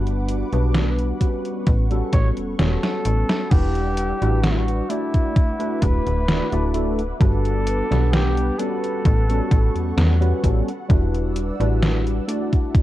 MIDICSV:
0, 0, Header, 1, 6, 480
1, 0, Start_track
1, 0, Tempo, 923077
1, 1828, Time_signature, 4, 2, 24, 8
1, 6668, End_track
2, 0, Start_track
2, 0, Title_t, "Analog synth pad"
2, 0, Program_c, 0, 89
2, 0, Note_on_c, 0, 71, 85
2, 0, Note_on_c, 0, 78, 78
2, 0, Note_on_c, 0, 86, 90
2, 618, Note_off_c, 0, 86, 0
2, 627, Note_on_c, 0, 85, 91
2, 1806, Note_off_c, 0, 71, 0
2, 1809, Note_off_c, 0, 78, 0
2, 1816, Note_off_c, 0, 85, 0
2, 1830, Note_on_c, 0, 78, 76
2, 1830, Note_on_c, 0, 88, 91
2, 1831, Note_on_c, 0, 74, 82
2, 2541, Note_off_c, 0, 78, 0
2, 2542, Note_off_c, 0, 74, 0
2, 2542, Note_off_c, 0, 88, 0
2, 2546, Note_on_c, 0, 71, 83
2, 2546, Note_on_c, 0, 86, 90
2, 2547, Note_on_c, 0, 76, 80
2, 2547, Note_on_c, 0, 78, 79
2, 3735, Note_off_c, 0, 86, 0
2, 3736, Note_off_c, 0, 76, 0
2, 3742, Note_on_c, 0, 86, 90
2, 4458, Note_off_c, 0, 86, 0
2, 4466, Note_on_c, 0, 85, 91
2, 5646, Note_off_c, 0, 71, 0
2, 5655, Note_off_c, 0, 85, 0
2, 5667, Note_on_c, 0, 74, 82
2, 5668, Note_on_c, 0, 88, 89
2, 6380, Note_off_c, 0, 74, 0
2, 6381, Note_off_c, 0, 88, 0
2, 6387, Note_on_c, 0, 76, 77
2, 6387, Note_on_c, 0, 81, 94
2, 6388, Note_on_c, 0, 71, 87
2, 6668, Note_off_c, 0, 71, 0
2, 6668, Note_off_c, 0, 76, 0
2, 6668, Note_off_c, 0, 78, 0
2, 6668, Note_off_c, 0, 81, 0
2, 6668, End_track
3, 0, Start_track
3, 0, Title_t, "Flugelhorn"
3, 0, Program_c, 1, 56
3, 1108, Note_on_c, 1, 73, 102
3, 1192, Note_off_c, 1, 73, 0
3, 1347, Note_on_c, 1, 69, 108
3, 1824, Note_on_c, 1, 67, 111
3, 1831, Note_off_c, 1, 69, 0
3, 2304, Note_on_c, 1, 66, 95
3, 2312, Note_off_c, 1, 67, 0
3, 2348, Note_on_c, 1, 64, 81
3, 2356, Note_off_c, 1, 66, 0
3, 2382, Note_on_c, 1, 66, 102
3, 2390, Note_off_c, 1, 64, 0
3, 2546, Note_on_c, 1, 64, 102
3, 2554, Note_off_c, 1, 66, 0
3, 3028, Note_on_c, 1, 71, 115
3, 3035, Note_off_c, 1, 64, 0
3, 3613, Note_off_c, 1, 71, 0
3, 3747, Note_on_c, 1, 69, 110
3, 4226, Note_on_c, 1, 67, 99
3, 4234, Note_off_c, 1, 69, 0
3, 4465, Note_on_c, 1, 69, 100
3, 4473, Note_off_c, 1, 67, 0
3, 5427, Note_off_c, 1, 69, 0
3, 6668, End_track
4, 0, Start_track
4, 0, Title_t, "Tine electric piano"
4, 0, Program_c, 2, 4
4, 0, Note_on_c, 2, 55, 96
4, 0, Note_on_c, 2, 59, 86
4, 0, Note_on_c, 2, 62, 90
4, 0, Note_on_c, 2, 66, 88
4, 0, Note_on_c, 2, 71, 108
4, 242, Note_off_c, 2, 55, 0
4, 244, Note_off_c, 2, 59, 0
4, 245, Note_off_c, 2, 62, 0
4, 246, Note_off_c, 2, 66, 0
4, 247, Note_off_c, 2, 71, 0
4, 272, Note_on_c, 2, 55, 93
4, 273, Note_on_c, 2, 59, 83
4, 275, Note_on_c, 2, 62, 85
4, 277, Note_on_c, 2, 66, 87
4, 279, Note_on_c, 2, 71, 102
4, 600, Note_off_c, 2, 55, 0
4, 601, Note_off_c, 2, 59, 0
4, 602, Note_off_c, 2, 62, 0
4, 603, Note_off_c, 2, 66, 0
4, 604, Note_off_c, 2, 71, 0
4, 624, Note_on_c, 2, 55, 78
4, 626, Note_on_c, 2, 59, 71
4, 627, Note_on_c, 2, 61, 70
4, 630, Note_on_c, 2, 66, 74
4, 632, Note_on_c, 2, 71, 90
4, 962, Note_off_c, 2, 55, 0
4, 963, Note_off_c, 2, 59, 0
4, 963, Note_off_c, 2, 61, 0
4, 965, Note_off_c, 2, 66, 0
4, 966, Note_off_c, 2, 71, 0
4, 990, Note_on_c, 2, 55, 90
4, 992, Note_on_c, 2, 59, 81
4, 994, Note_on_c, 2, 61, 82
4, 995, Note_on_c, 2, 66, 83
4, 997, Note_on_c, 2, 69, 98
4, 1319, Note_off_c, 2, 55, 0
4, 1320, Note_off_c, 2, 59, 0
4, 1321, Note_off_c, 2, 61, 0
4, 1321, Note_off_c, 2, 66, 0
4, 1322, Note_off_c, 2, 69, 0
4, 1344, Note_on_c, 2, 55, 77
4, 1345, Note_on_c, 2, 59, 70
4, 1347, Note_on_c, 2, 61, 71
4, 1350, Note_on_c, 2, 66, 70
4, 1351, Note_on_c, 2, 73, 82
4, 1799, Note_off_c, 2, 55, 0
4, 1799, Note_off_c, 2, 59, 0
4, 1800, Note_off_c, 2, 61, 0
4, 1802, Note_off_c, 2, 66, 0
4, 1803, Note_off_c, 2, 73, 0
4, 1823, Note_on_c, 2, 55, 98
4, 1825, Note_on_c, 2, 62, 89
4, 1827, Note_on_c, 2, 64, 90
4, 1828, Note_on_c, 2, 78, 90
4, 1831, Note_on_c, 2, 71, 109
4, 2161, Note_off_c, 2, 55, 0
4, 2162, Note_off_c, 2, 62, 0
4, 2164, Note_off_c, 2, 64, 0
4, 2164, Note_off_c, 2, 78, 0
4, 2165, Note_off_c, 2, 71, 0
4, 2190, Note_on_c, 2, 55, 94
4, 2193, Note_on_c, 2, 62, 87
4, 2194, Note_on_c, 2, 64, 86
4, 2196, Note_on_c, 2, 66, 86
4, 2198, Note_on_c, 2, 71, 102
4, 2519, Note_off_c, 2, 55, 0
4, 2521, Note_off_c, 2, 62, 0
4, 2521, Note_off_c, 2, 64, 0
4, 2522, Note_off_c, 2, 66, 0
4, 2523, Note_off_c, 2, 71, 0
4, 2544, Note_on_c, 2, 57, 82
4, 2546, Note_on_c, 2, 62, 71
4, 2548, Note_on_c, 2, 64, 71
4, 2549, Note_on_c, 2, 66, 73
4, 2552, Note_on_c, 2, 74, 87
4, 2882, Note_off_c, 2, 57, 0
4, 2883, Note_off_c, 2, 62, 0
4, 2884, Note_off_c, 2, 64, 0
4, 2885, Note_off_c, 2, 66, 0
4, 2886, Note_off_c, 2, 74, 0
4, 2907, Note_on_c, 2, 57, 87
4, 2908, Note_on_c, 2, 62, 81
4, 2910, Note_on_c, 2, 64, 81
4, 2912, Note_on_c, 2, 66, 81
4, 2914, Note_on_c, 2, 71, 98
4, 3237, Note_off_c, 2, 57, 0
4, 3238, Note_off_c, 2, 62, 0
4, 3239, Note_off_c, 2, 64, 0
4, 3240, Note_off_c, 2, 66, 0
4, 3241, Note_off_c, 2, 71, 0
4, 3262, Note_on_c, 2, 57, 74
4, 3263, Note_on_c, 2, 62, 67
4, 3265, Note_on_c, 2, 64, 69
4, 3268, Note_on_c, 2, 66, 68
4, 3270, Note_on_c, 2, 74, 82
4, 3361, Note_off_c, 2, 57, 0
4, 3362, Note_off_c, 2, 62, 0
4, 3362, Note_off_c, 2, 64, 0
4, 3364, Note_off_c, 2, 66, 0
4, 3365, Note_off_c, 2, 74, 0
4, 3388, Note_on_c, 2, 57, 94
4, 3389, Note_on_c, 2, 62, 86
4, 3392, Note_on_c, 2, 64, 86
4, 3394, Note_on_c, 2, 66, 86
4, 3396, Note_on_c, 2, 74, 105
4, 3488, Note_off_c, 2, 57, 0
4, 3489, Note_off_c, 2, 62, 0
4, 3490, Note_off_c, 2, 64, 0
4, 3491, Note_off_c, 2, 66, 0
4, 3492, Note_off_c, 2, 74, 0
4, 3503, Note_on_c, 2, 57, 83
4, 3504, Note_on_c, 2, 62, 76
4, 3506, Note_on_c, 2, 64, 78
4, 3508, Note_on_c, 2, 66, 76
4, 3510, Note_on_c, 2, 69, 93
4, 3636, Note_off_c, 2, 57, 0
4, 3637, Note_off_c, 2, 62, 0
4, 3638, Note_off_c, 2, 64, 0
4, 3639, Note_off_c, 2, 66, 0
4, 3640, Note_off_c, 2, 69, 0
4, 3743, Note_on_c, 2, 55, 99
4, 3745, Note_on_c, 2, 59, 90
4, 3747, Note_on_c, 2, 62, 90
4, 3748, Note_on_c, 2, 66, 86
4, 3750, Note_on_c, 2, 71, 108
4, 4081, Note_off_c, 2, 55, 0
4, 4082, Note_off_c, 2, 59, 0
4, 4083, Note_off_c, 2, 62, 0
4, 4084, Note_off_c, 2, 66, 0
4, 4085, Note_off_c, 2, 71, 0
4, 4109, Note_on_c, 2, 55, 94
4, 4111, Note_on_c, 2, 59, 88
4, 4113, Note_on_c, 2, 62, 85
4, 4115, Note_on_c, 2, 78, 90
4, 4117, Note_on_c, 2, 71, 101
4, 4439, Note_off_c, 2, 55, 0
4, 4440, Note_off_c, 2, 59, 0
4, 4441, Note_off_c, 2, 62, 0
4, 4441, Note_off_c, 2, 78, 0
4, 4442, Note_off_c, 2, 71, 0
4, 4465, Note_on_c, 2, 55, 81
4, 4466, Note_on_c, 2, 59, 74
4, 4468, Note_on_c, 2, 61, 72
4, 4470, Note_on_c, 2, 66, 73
4, 4471, Note_on_c, 2, 71, 90
4, 4802, Note_off_c, 2, 55, 0
4, 4803, Note_off_c, 2, 59, 0
4, 4804, Note_off_c, 2, 61, 0
4, 4805, Note_off_c, 2, 66, 0
4, 4805, Note_off_c, 2, 71, 0
4, 4830, Note_on_c, 2, 55, 90
4, 4833, Note_on_c, 2, 59, 82
4, 4834, Note_on_c, 2, 61, 84
4, 4837, Note_on_c, 2, 66, 81
4, 4838, Note_on_c, 2, 69, 100
4, 5159, Note_off_c, 2, 55, 0
4, 5161, Note_off_c, 2, 59, 0
4, 5161, Note_off_c, 2, 61, 0
4, 5162, Note_off_c, 2, 66, 0
4, 5163, Note_off_c, 2, 69, 0
4, 5182, Note_on_c, 2, 55, 76
4, 5184, Note_on_c, 2, 59, 67
4, 5185, Note_on_c, 2, 61, 69
4, 5186, Note_on_c, 2, 66, 70
4, 5189, Note_on_c, 2, 71, 85
4, 5281, Note_off_c, 2, 55, 0
4, 5282, Note_off_c, 2, 59, 0
4, 5283, Note_off_c, 2, 61, 0
4, 5283, Note_off_c, 2, 66, 0
4, 5284, Note_off_c, 2, 71, 0
4, 5306, Note_on_c, 2, 55, 92
4, 5307, Note_on_c, 2, 59, 86
4, 5308, Note_on_c, 2, 61, 87
4, 5311, Note_on_c, 2, 66, 84
4, 5314, Note_on_c, 2, 71, 104
4, 5407, Note_off_c, 2, 55, 0
4, 5408, Note_off_c, 2, 59, 0
4, 5408, Note_off_c, 2, 61, 0
4, 5410, Note_off_c, 2, 66, 0
4, 5411, Note_off_c, 2, 71, 0
4, 5422, Note_on_c, 2, 55, 84
4, 5424, Note_on_c, 2, 59, 75
4, 5426, Note_on_c, 2, 61, 80
4, 5428, Note_on_c, 2, 66, 78
4, 5430, Note_on_c, 2, 69, 94
4, 5556, Note_off_c, 2, 55, 0
4, 5557, Note_off_c, 2, 59, 0
4, 5558, Note_off_c, 2, 61, 0
4, 5559, Note_off_c, 2, 66, 0
4, 5560, Note_off_c, 2, 69, 0
4, 5660, Note_on_c, 2, 55, 97
4, 5663, Note_on_c, 2, 62, 92
4, 5664, Note_on_c, 2, 64, 91
4, 5666, Note_on_c, 2, 66, 92
4, 5668, Note_on_c, 2, 71, 110
4, 6000, Note_off_c, 2, 55, 0
4, 6001, Note_off_c, 2, 62, 0
4, 6002, Note_off_c, 2, 64, 0
4, 6003, Note_off_c, 2, 66, 0
4, 6004, Note_off_c, 2, 71, 0
4, 6029, Note_on_c, 2, 55, 97
4, 6032, Note_on_c, 2, 62, 85
4, 6033, Note_on_c, 2, 64, 86
4, 6035, Note_on_c, 2, 66, 86
4, 6036, Note_on_c, 2, 71, 105
4, 6359, Note_off_c, 2, 55, 0
4, 6360, Note_off_c, 2, 62, 0
4, 6361, Note_off_c, 2, 64, 0
4, 6362, Note_off_c, 2, 66, 0
4, 6362, Note_off_c, 2, 71, 0
4, 6382, Note_on_c, 2, 57, 78
4, 6384, Note_on_c, 2, 62, 75
4, 6387, Note_on_c, 2, 64, 73
4, 6387, Note_on_c, 2, 66, 75
4, 6390, Note_on_c, 2, 74, 90
4, 6668, Note_off_c, 2, 57, 0
4, 6668, Note_off_c, 2, 62, 0
4, 6668, Note_off_c, 2, 64, 0
4, 6668, Note_off_c, 2, 66, 0
4, 6668, Note_off_c, 2, 74, 0
4, 6668, End_track
5, 0, Start_track
5, 0, Title_t, "FM bass"
5, 0, Program_c, 3, 39
5, 0, Note_on_c, 3, 31, 99
5, 227, Note_off_c, 3, 31, 0
5, 274, Note_on_c, 3, 35, 87
5, 585, Note_off_c, 3, 35, 0
5, 868, Note_on_c, 3, 33, 98
5, 1054, Note_off_c, 3, 33, 0
5, 1108, Note_on_c, 3, 33, 107
5, 1204, Note_off_c, 3, 33, 0
5, 1234, Note_on_c, 3, 28, 40
5, 1325, Note_off_c, 3, 28, 0
5, 1348, Note_on_c, 3, 28, 96
5, 1444, Note_off_c, 3, 28, 0
5, 1588, Note_on_c, 3, 33, 90
5, 1684, Note_off_c, 3, 33, 0
5, 1827, Note_on_c, 3, 28, 95
5, 2146, Note_off_c, 3, 28, 0
5, 2194, Note_on_c, 3, 33, 91
5, 2505, Note_off_c, 3, 33, 0
5, 3028, Note_on_c, 3, 26, 104
5, 3124, Note_off_c, 3, 26, 0
5, 3154, Note_on_c, 3, 26, 87
5, 3334, Note_off_c, 3, 26, 0
5, 3393, Note_on_c, 3, 26, 83
5, 3705, Note_off_c, 3, 26, 0
5, 3747, Note_on_c, 3, 31, 98
5, 4066, Note_off_c, 3, 31, 0
5, 4114, Note_on_c, 3, 35, 90
5, 4425, Note_off_c, 3, 35, 0
5, 4707, Note_on_c, 3, 33, 100
5, 4894, Note_off_c, 3, 33, 0
5, 4948, Note_on_c, 3, 33, 86
5, 5044, Note_off_c, 3, 33, 0
5, 5072, Note_on_c, 3, 40, 42
5, 5165, Note_off_c, 3, 40, 0
5, 5187, Note_on_c, 3, 40, 86
5, 5373, Note_off_c, 3, 40, 0
5, 5428, Note_on_c, 3, 33, 81
5, 5524, Note_off_c, 3, 33, 0
5, 5667, Note_on_c, 3, 28, 97
5, 5985, Note_off_c, 3, 28, 0
5, 6032, Note_on_c, 3, 33, 91
5, 6344, Note_off_c, 3, 33, 0
5, 6668, End_track
6, 0, Start_track
6, 0, Title_t, "Drums"
6, 34, Note_on_c, 9, 42, 38
6, 86, Note_off_c, 9, 42, 0
6, 148, Note_on_c, 9, 42, 92
6, 200, Note_off_c, 9, 42, 0
6, 273, Note_on_c, 9, 42, 42
6, 325, Note_off_c, 9, 42, 0
6, 387, Note_on_c, 9, 38, 112
6, 387, Note_on_c, 9, 42, 66
6, 439, Note_off_c, 9, 38, 0
6, 439, Note_off_c, 9, 42, 0
6, 513, Note_on_c, 9, 42, 39
6, 565, Note_off_c, 9, 42, 0
6, 628, Note_on_c, 9, 36, 58
6, 628, Note_on_c, 9, 42, 89
6, 680, Note_off_c, 9, 36, 0
6, 680, Note_off_c, 9, 42, 0
6, 754, Note_on_c, 9, 42, 40
6, 806, Note_off_c, 9, 42, 0
6, 866, Note_on_c, 9, 42, 67
6, 868, Note_on_c, 9, 36, 112
6, 918, Note_off_c, 9, 42, 0
6, 920, Note_off_c, 9, 36, 0
6, 992, Note_on_c, 9, 42, 41
6, 1044, Note_off_c, 9, 42, 0
6, 1107, Note_on_c, 9, 36, 102
6, 1107, Note_on_c, 9, 38, 37
6, 1107, Note_on_c, 9, 42, 93
6, 1159, Note_off_c, 9, 36, 0
6, 1159, Note_off_c, 9, 38, 0
6, 1159, Note_off_c, 9, 42, 0
6, 1232, Note_on_c, 9, 42, 39
6, 1284, Note_off_c, 9, 42, 0
6, 1347, Note_on_c, 9, 38, 114
6, 1347, Note_on_c, 9, 42, 67
6, 1399, Note_off_c, 9, 38, 0
6, 1399, Note_off_c, 9, 42, 0
6, 1473, Note_on_c, 9, 38, 73
6, 1473, Note_on_c, 9, 42, 38
6, 1525, Note_off_c, 9, 38, 0
6, 1525, Note_off_c, 9, 42, 0
6, 1586, Note_on_c, 9, 42, 94
6, 1638, Note_off_c, 9, 42, 0
6, 1713, Note_on_c, 9, 38, 97
6, 1713, Note_on_c, 9, 42, 39
6, 1765, Note_off_c, 9, 38, 0
6, 1765, Note_off_c, 9, 42, 0
6, 1827, Note_on_c, 9, 42, 69
6, 1827, Note_on_c, 9, 49, 104
6, 1828, Note_on_c, 9, 36, 120
6, 1879, Note_off_c, 9, 42, 0
6, 1879, Note_off_c, 9, 49, 0
6, 1880, Note_off_c, 9, 36, 0
6, 1952, Note_on_c, 9, 42, 42
6, 2004, Note_off_c, 9, 42, 0
6, 2066, Note_on_c, 9, 42, 98
6, 2118, Note_off_c, 9, 42, 0
6, 2194, Note_on_c, 9, 42, 43
6, 2246, Note_off_c, 9, 42, 0
6, 2306, Note_on_c, 9, 38, 117
6, 2306, Note_on_c, 9, 42, 69
6, 2358, Note_off_c, 9, 38, 0
6, 2358, Note_off_c, 9, 42, 0
6, 2434, Note_on_c, 9, 42, 40
6, 2486, Note_off_c, 9, 42, 0
6, 2548, Note_on_c, 9, 42, 93
6, 2600, Note_off_c, 9, 42, 0
6, 2673, Note_on_c, 9, 42, 43
6, 2674, Note_on_c, 9, 36, 60
6, 2725, Note_off_c, 9, 42, 0
6, 2726, Note_off_c, 9, 36, 0
6, 2788, Note_on_c, 9, 36, 118
6, 2788, Note_on_c, 9, 42, 65
6, 2840, Note_off_c, 9, 36, 0
6, 2840, Note_off_c, 9, 42, 0
6, 2912, Note_on_c, 9, 42, 41
6, 2964, Note_off_c, 9, 42, 0
6, 3027, Note_on_c, 9, 42, 96
6, 3028, Note_on_c, 9, 36, 104
6, 3079, Note_off_c, 9, 42, 0
6, 3080, Note_off_c, 9, 36, 0
6, 3154, Note_on_c, 9, 42, 40
6, 3206, Note_off_c, 9, 42, 0
6, 3268, Note_on_c, 9, 38, 117
6, 3268, Note_on_c, 9, 42, 70
6, 3320, Note_off_c, 9, 38, 0
6, 3320, Note_off_c, 9, 42, 0
6, 3393, Note_on_c, 9, 42, 41
6, 3445, Note_off_c, 9, 42, 0
6, 3507, Note_on_c, 9, 42, 95
6, 3559, Note_off_c, 9, 42, 0
6, 3634, Note_on_c, 9, 42, 41
6, 3686, Note_off_c, 9, 42, 0
6, 3747, Note_on_c, 9, 36, 124
6, 3748, Note_on_c, 9, 42, 69
6, 3799, Note_off_c, 9, 36, 0
6, 3800, Note_off_c, 9, 42, 0
6, 3874, Note_on_c, 9, 42, 43
6, 3926, Note_off_c, 9, 42, 0
6, 3987, Note_on_c, 9, 42, 96
6, 4039, Note_off_c, 9, 42, 0
6, 4116, Note_on_c, 9, 38, 40
6, 4116, Note_on_c, 9, 42, 43
6, 4168, Note_off_c, 9, 38, 0
6, 4168, Note_off_c, 9, 42, 0
6, 4229, Note_on_c, 9, 38, 120
6, 4229, Note_on_c, 9, 42, 69
6, 4281, Note_off_c, 9, 38, 0
6, 4281, Note_off_c, 9, 42, 0
6, 4354, Note_on_c, 9, 42, 41
6, 4406, Note_off_c, 9, 42, 0
6, 4469, Note_on_c, 9, 42, 93
6, 4521, Note_off_c, 9, 42, 0
6, 4596, Note_on_c, 9, 42, 43
6, 4648, Note_off_c, 9, 42, 0
6, 4707, Note_on_c, 9, 36, 126
6, 4709, Note_on_c, 9, 42, 68
6, 4759, Note_off_c, 9, 36, 0
6, 4761, Note_off_c, 9, 42, 0
6, 4834, Note_on_c, 9, 42, 43
6, 4886, Note_off_c, 9, 42, 0
6, 4947, Note_on_c, 9, 36, 110
6, 4948, Note_on_c, 9, 42, 99
6, 4999, Note_off_c, 9, 36, 0
6, 5000, Note_off_c, 9, 42, 0
6, 5074, Note_on_c, 9, 42, 42
6, 5126, Note_off_c, 9, 42, 0
6, 5189, Note_on_c, 9, 38, 127
6, 5189, Note_on_c, 9, 42, 70
6, 5241, Note_off_c, 9, 38, 0
6, 5241, Note_off_c, 9, 42, 0
6, 5315, Note_on_c, 9, 42, 42
6, 5367, Note_off_c, 9, 42, 0
6, 5428, Note_on_c, 9, 36, 64
6, 5429, Note_on_c, 9, 42, 99
6, 5480, Note_off_c, 9, 36, 0
6, 5481, Note_off_c, 9, 42, 0
6, 5556, Note_on_c, 9, 42, 41
6, 5608, Note_off_c, 9, 42, 0
6, 5668, Note_on_c, 9, 36, 125
6, 5669, Note_on_c, 9, 42, 69
6, 5720, Note_off_c, 9, 36, 0
6, 5721, Note_off_c, 9, 42, 0
6, 5795, Note_on_c, 9, 42, 42
6, 5847, Note_off_c, 9, 42, 0
6, 5907, Note_on_c, 9, 42, 94
6, 5959, Note_off_c, 9, 42, 0
6, 6034, Note_on_c, 9, 42, 43
6, 6086, Note_off_c, 9, 42, 0
6, 6149, Note_on_c, 9, 38, 121
6, 6149, Note_on_c, 9, 42, 68
6, 6201, Note_off_c, 9, 38, 0
6, 6201, Note_off_c, 9, 42, 0
6, 6275, Note_on_c, 9, 42, 41
6, 6327, Note_off_c, 9, 42, 0
6, 6388, Note_on_c, 9, 42, 93
6, 6440, Note_off_c, 9, 42, 0
6, 6514, Note_on_c, 9, 36, 64
6, 6514, Note_on_c, 9, 42, 41
6, 6566, Note_off_c, 9, 36, 0
6, 6566, Note_off_c, 9, 42, 0
6, 6628, Note_on_c, 9, 36, 125
6, 6629, Note_on_c, 9, 42, 69
6, 6668, Note_off_c, 9, 36, 0
6, 6668, Note_off_c, 9, 42, 0
6, 6668, End_track
0, 0, End_of_file